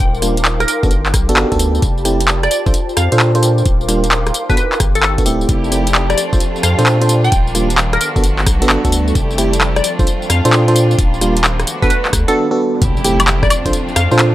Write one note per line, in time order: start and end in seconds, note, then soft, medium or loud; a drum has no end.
0.00 0.65 D#1 loud
0.00 0.68 A#4 medium
0.14 tambourine soft
0.22 0.36 G3 medium
0.22 0.36 A#3 medium
0.22 0.36 D4 medium
0.22 0.36 F4 medium
0.22 cross-stick soft
0.22 open hi-hat loud
0.22 tambourine medium
0.37 closed hi-hat medium
0.37 tambourine soft
0.45 clap loud
0.45 tambourine soft
0.60 0.65 A#4 medium
0.60 cross-stick medium
0.60 closed hi-hat soft
0.60 tambourine soft
0.68 0.78 A#4 medium
0.68 open hi-hat loud
0.68 tambourine medium
0.83 1.15 G1 medium
0.83 0.90 B3 medium
0.83 0.90 D4 medium
0.83 0.90 F#4 medium
0.83 0.90 A4 medium
0.83 kick loud
0.83 tambourine soft
0.91 closed hi-hat medium
0.91 tambourine soft
1.06 clap medium
1.06 tambourine soft
1.14 1.30 B1 medium
1.14 kick loud
1.14 cross-stick medium
1.14 open hi-hat loud
1.14 tambourine medium
1.21 2.97 A5 medium
1.29 1.45 G1 medium
1.29 1.48 B3 medium
1.29 1.48 D4 medium
1.29 1.48 F#4 medium
1.29 1.48 A4 loud
1.29 closed hi-hat medium
1.29 tambourine soft
1.37 clap loud
1.37 tambourine soft
1.52 1.80 D2 medium
1.52 1.81 B3 medium
1.52 1.81 D4 medium
1.52 1.81 F#4 medium
1.52 1.81 A4 loud
1.52 kick medium
1.52 closed hi-hat soft
1.52 tambourine soft
1.59 open hi-hat loud
1.59 tambourine medium
1.75 tambourine soft
1.82 2.48 F1 loud
1.82 kick loud
1.82 closed hi-hat medium
1.82 tambourine soft
1.98 tambourine soft
2.05 2.19 A3 medium
2.05 2.19 C4 medium
2.05 2.19 E4 medium
2.05 2.19 G4 medium
2.05 cross-stick soft
2.05 open hi-hat loud
2.05 tambourine medium
2.20 closed hi-hat medium
2.20 tambourine soft
2.28 clap loud
2.28 tambourine soft
2.43 2.48 D5 medium
2.43 cross-stick medium
2.43 closed hi-hat soft
2.43 tambourine soft
2.51 4.34 A#4 medium
2.51 2.61 D5 medium
2.51 open hi-hat loud
2.51 tambourine medium
2.66 2.72 A#1 medium
2.66 2.73 D4 medium
2.66 2.73 F4 medium
2.66 2.73 A4 medium
2.66 2.73 C5 medium
2.66 kick loud
2.66 tambourine soft
2.74 closed hi-hat medium
2.74 tambourine soft
2.89 tambourine soft
2.97 3.09 F2 loud
2.97 3.14 F5 medium
2.97 cross-stick medium
2.97 open hi-hat loud
2.97 tambourine medium
3.12 3.63 A#2 medium
3.12 3.31 D4 medium
3.12 3.31 F4 medium
3.12 3.31 A4 medium
3.12 3.31 C5 loud
3.12 closed hi-hat medium
3.12 tambourine soft
3.20 clap loud
3.20 tambourine soft
3.35 3.65 D4 medium
3.35 3.65 F4 medium
3.35 3.65 A4 medium
3.35 3.65 C5 medium
3.35 closed hi-hat soft
3.35 tambourine soft
3.43 open hi-hat loud
3.43 tambourine medium
3.58 tambourine soft
3.65 4.32 D#1 loud
3.65 kick loud
3.65 closed hi-hat medium
3.65 tambourine soft
3.81 tambourine soft
3.88 4.03 G3 medium
3.88 4.03 A#3 medium
3.88 4.03 D4 medium
3.88 4.03 F4 medium
3.88 cross-stick soft
3.88 open hi-hat medium
3.88 tambourine medium
4.04 closed hi-hat medium
4.04 tambourine soft
4.11 clap loud
4.11 tambourine soft
4.27 cross-stick medium
4.27 closed hi-hat soft
4.27 tambourine soft
4.34 open hi-hat loud
4.34 tambourine medium
4.50 4.56 G1 medium
4.50 4.57 B3 medium
4.50 4.57 D4 medium
4.50 4.57 F#4 medium
4.50 4.57 A4 medium
4.50 4.54 B4 medium
4.50 kick loud
4.50 tambourine soft
4.57 4.67 B4 medium
4.57 closed hi-hat medium
4.57 tambourine soft
4.72 clap medium
4.72 tambourine soft
4.80 5.27 G1 medium
4.80 kick loud
4.80 cross-stick medium
4.80 open hi-hat loud
4.80 tambourine medium
4.88 6.63 A5 medium
4.95 5.00 A4 medium
4.95 closed hi-hat medium
4.95 tambourine soft
5.03 5.13 A4 medium
5.03 clap loud
5.03 tambourine soft
5.18 5.25 B3 medium
5.18 5.25 D4 medium
5.18 5.25 F#4 medium
5.18 5.25 A4 medium
5.18 kick medium
5.18 closed hi-hat soft
5.18 tambourine soft
5.26 5.45 D1 medium
5.26 5.70 A3 medium
5.26 5.70 C4 medium
5.26 5.70 E4 medium
5.26 5.70 G4 medium
5.26 open hi-hat loud
5.26 tambourine medium
5.41 tambourine soft
5.49 6.15 F1 loud
5.49 7.30 A3 medium
5.49 7.30 C4 medium
5.49 6.17 E4 medium
5.49 6.17 G4 medium
5.49 kick loud
5.49 closed hi-hat medium
5.49 tambourine soft
5.64 tambourine soft
5.72 5.86 A3 medium
5.72 5.86 C4 medium
5.72 5.86 E4 medium
5.72 5.86 G4 medium
5.72 cross-stick soft
5.72 open hi-hat medium
5.72 tambourine medium
5.87 closed hi-hat medium
5.87 tambourine soft
5.95 clap loud
5.95 tambourine soft
6.10 6.15 D5 medium
6.10 cross-stick medium
6.10 closed hi-hat soft
6.10 tambourine soft
6.17 9.12 D4 medium
6.17 7.99 F4 medium
6.17 6.27 D5 medium
6.17 open hi-hat loud
6.17 tambourine medium
6.33 6.39 A#1 medium
6.33 6.40 D4 medium
6.33 6.40 F4 medium
6.33 6.40 A4 medium
6.33 6.40 C5 medium
6.33 kick loud
6.33 tambourine soft
6.40 closed hi-hat medium
6.40 tambourine soft
6.56 tambourine soft
6.63 6.75 F2 loud
6.63 6.80 F5 medium
6.63 cross-stick medium
6.63 open hi-hat loud
6.63 tambourine medium
6.79 7.29 A#2 medium
6.79 6.98 D4 medium
6.79 6.98 F4 medium
6.79 6.98 A4 medium
6.79 6.98 C5 loud
6.79 closed hi-hat medium
6.79 tambourine soft
6.86 clap loud
6.86 tambourine soft
7.01 7.31 D4 medium
7.01 7.31 F4 medium
7.01 7.31 A4 medium
7.01 7.31 C5 loud
7.01 closed hi-hat medium
7.01 tambourine soft
7.09 open hi-hat loud
7.09 tambourine medium
7.24 7.35 G5 medium
7.24 tambourine soft
7.32 7.98 D#1 loud
7.32 8.00 G3 medium
7.32 8.00 A#3 medium
7.32 kick loud
7.32 closed hi-hat medium
7.32 tambourine soft
7.47 tambourine soft
7.55 7.69 G3 medium
7.55 7.69 A#3 medium
7.55 7.69 D4 medium
7.55 7.69 F4 medium
7.55 cross-stick soft
7.55 open hi-hat loud
7.55 tambourine medium
7.70 closed hi-hat medium
7.70 tambourine soft
7.78 clap loud
7.78 tambourine soft
7.93 7.98 A#4 medium
7.93 cross-stick medium
7.93 closed hi-hat soft
7.93 tambourine soft
8.01 10.95 A3 medium
8.01 9.14 B3 medium
8.01 9.14 F#4 medium
8.01 8.11 A#4 medium
8.01 open hi-hat loud
8.01 tambourine medium
8.16 8.48 G1 medium
8.16 8.23 B3 medium
8.16 8.23 D4 medium
8.16 8.23 F#4 medium
8.16 8.23 A4 medium
8.16 kick loud
8.16 tambourine soft
8.24 closed hi-hat medium
8.24 tambourine soft
8.39 10.30 A5 medium
8.39 clap medium
8.39 tambourine soft
8.46 8.63 B1 medium
8.46 kick loud
8.46 cross-stick medium
8.46 open hi-hat loud
8.46 tambourine medium
8.62 8.78 G1 loud
8.62 8.81 B3 medium
8.62 8.81 D4 medium
8.62 8.81 F#4 medium
8.62 8.81 A4 loud
8.62 closed hi-hat medium
8.62 tambourine soft
8.70 clap loud
8.70 tambourine soft
8.85 9.12 D2 loud
8.85 9.14 B3 medium
8.85 9.14 D4 medium
8.85 9.14 F#4 medium
8.85 9.14 A4 medium
8.85 kick medium
8.85 closed hi-hat medium
8.85 tambourine soft
8.92 open hi-hat loud
8.92 tambourine medium
9.08 tambourine soft
9.15 9.81 F1 medium
9.15 9.83 C4 medium
9.15 9.83 E4 medium
9.15 9.83 G4 medium
9.15 kick loud
9.15 closed hi-hat medium
9.15 tambourine soft
9.31 tambourine soft
9.38 9.52 A3 medium
9.38 9.52 C4 medium
9.38 9.52 E4 medium
9.38 9.52 G4 medium
9.38 cross-stick soft
9.38 open hi-hat loud
9.38 tambourine medium
9.53 closed hi-hat medium
9.53 tambourine soft
9.61 clap loud
9.61 tambourine soft
9.76 9.81 D5 medium
9.76 cross-stick medium
9.76 closed hi-hat soft
9.76 tambourine soft
9.84 10.97 C4 medium
9.84 11.65 D4 medium
9.84 11.65 F4 medium
9.84 9.94 D5 medium
9.84 open hi-hat loud
9.84 tambourine medium
9.99 10.05 A#1 medium
9.99 10.06 D4 medium
9.99 10.06 F4 medium
9.99 10.06 A4 medium
9.99 10.06 C5 medium
9.99 kick loud
9.99 tambourine soft
10.07 11.67 F5 medium
10.07 closed hi-hat medium
10.07 tambourine soft
10.22 tambourine soft
10.30 10.41 F2 loud
10.30 10.47 F5 medium
10.30 cross-stick medium
10.30 open hi-hat loud
10.30 tambourine medium
10.45 10.96 A#2 medium
10.45 10.64 D4 medium
10.45 10.64 F4 medium
10.45 10.64 A4 medium
10.45 10.64 C5 loud
10.45 closed hi-hat medium
10.45 tambourine soft
10.53 clap loud
10.53 tambourine soft
10.68 10.98 D4 medium
10.68 10.98 F4 medium
10.68 10.98 A4 medium
10.68 10.98 C5 loud
10.68 closed hi-hat medium
10.68 tambourine soft
10.76 open hi-hat loud
10.76 tambourine medium
10.91 tambourine soft
10.99 11.64 D#1 loud
10.99 11.67 G3 medium
10.99 11.67 A#3 medium
10.99 kick loud
10.99 closed hi-hat medium
10.99 tambourine soft
11.14 tambourine soft
11.21 11.35 G3 medium
11.21 11.35 A#3 medium
11.21 11.35 D4 medium
11.21 11.35 F4 medium
11.21 cross-stick soft
11.21 open hi-hat loud
11.21 tambourine medium
11.37 closed hi-hat medium
11.37 tambourine soft
11.44 clap loud
11.44 tambourine soft
11.60 cross-stick medium
11.60 closed hi-hat soft
11.60 tambourine soft
11.67 12.35 A3 medium
11.67 12.35 B3 medium
11.67 12.35 D4 medium
11.67 12.35 F#4 medium
11.67 open hi-hat loud
11.67 tambourine medium
11.82 11.88 G1 medium
11.82 11.89 B3 medium
11.82 11.89 D4 medium
11.82 11.89 F#4 medium
11.82 11.89 A4 medium
11.82 11.87 B4 medium
11.82 kick loud
11.82 tambourine soft
11.90 12.00 B4 medium
11.90 closed hi-hat medium
11.90 tambourine soft
12.05 clap medium
12.05 tambourine soft
12.13 12.25 D2 loud
12.13 kick loud
12.13 cross-stick medium
12.13 open hi-hat loud
12.13 tambourine medium
12.28 12.47 B3 medium
12.28 12.47 D4 medium
12.28 12.47 F#4 medium
12.28 12.33 A4 medium
12.28 12.47 A4 loud
12.28 closed hi-hat medium
12.28 tambourine soft
12.51 12.81 B3 medium
12.51 12.81 D4 medium
12.51 12.81 F#4 medium
12.51 12.81 A4 loud
12.82 13.48 F1 loud
12.82 14.35 A3 medium
12.82 14.35 C4 medium
12.82 13.50 E4 medium
12.82 13.50 G4 medium
12.82 kick loud
12.82 closed hi-hat medium
12.82 tambourine soft
12.82 impact medium
12.97 tambourine soft
13.04 13.19 A3 medium
13.04 13.19 C4 medium
13.04 13.19 E4 medium
13.04 13.19 G4 medium
13.04 cross-stick soft
13.04 open hi-hat loud
13.04 tambourine medium
13.20 closed hi-hat medium
13.20 tambourine soft
13.20 high woodblock medium
13.28 clap loud
13.28 closed hi-hat medium
13.28 tambourine soft
13.43 13.48 D5 medium
13.43 kick loud
13.43 cross-stick medium
13.43 tambourine soft
13.50 14.35 D4 medium
13.50 14.35 F4 medium
13.50 13.60 D5 medium
13.50 open hi-hat loud
13.50 tambourine medium
13.50 high woodblock medium
13.66 13.72 A#1 loud
13.66 13.73 D4 medium
13.66 13.73 F4 medium
13.66 13.73 A4 medium
13.66 13.73 C5 medium
13.66 kick medium
13.66 closed hi-hat soft
13.66 tambourine soft
13.73 closed hi-hat medium
13.73 tambourine soft
13.88 tambourine soft
13.96 14.08 F2 loud
13.96 14.13 F5 medium
13.96 cross-stick medium
13.96 open hi-hat loud
13.96 tambourine medium
14.11 14.35 A#2 medium
14.11 14.31 D4 medium
14.11 14.31 F4 medium
14.11 14.31 A4 medium
14.11 14.31 C5 loud
14.11 tambourine soft
14.19 clap loud
14.19 closed hi-hat medium
14.19 tambourine soft